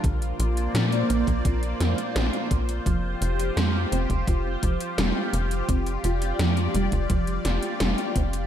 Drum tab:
HH |xxxxxxxxxxxxxxxx|x-xxx-xxx-xxx-xx|xxxxxxxxxxxxxxxx|
SD |----o-----o-o---|----o-------o---|----o-----o-o---|
BD |o------oo-----o-|o------oo-o-----|o------oo-----o-|